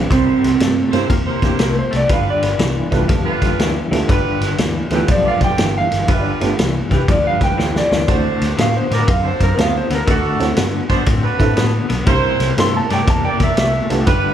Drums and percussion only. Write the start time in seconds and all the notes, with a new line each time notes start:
0.11 kick, snare, ride
0.44 snare, ride
0.60 snare, ride
0.93 snare, ride
1.10 kick, snare, ride
1.42 kick, snare, ride
1.59 snare, ride
1.93 snare, ride
2.09 kick, snare, ride
2.43 snare, ride
2.59 snare, ride
2.92 kick, snare, ride
3.09 kick, snare, ride
3.42 kick, snare, ride
3.59 snare, ride
3.93 snare, ride
4.09 kick, snare, ride
4.41 snare, ride
4.58 snare, ride
4.90 snare, ride
5.08 kick, snare, ride
5.41 kick, snare, ride
5.58 snare, ride
5.92 snare, ride
6.08 kick, snare, ride
6.41 snare, ride
6.59 snare, ride
6.91 kick, snare, ride
7.08 kick, snare, ride
7.41 kick, snare, ride
7.59 snare
7.76 snare
7.92 snare
8.08 kick, snare, ride
8.41 snare, ride
8.58 snare, ride
8.91 snare, ride
9.08 kick, snare, ride
9.40 kick, snare, ride
9.58 snare, ride
9.90 snare, ride
10.07 kick, snare, ride
10.40 snare, ride
10.56 snare, ride
10.90 kick, snare, ride
11.06 kick, snare, ride
11.40 kick, snare, ride
11.57 snare, ride
11.90 snare, ride
12.06 kick, snare, ride
12.40 snare, ride
12.58 snare, ride
12.90 snare, ride
13.08 kick, snare, ride
13.40 kick, snare, ride
13.57 snare, ride
13.90 snare, ride
14.07 kick, snare, ride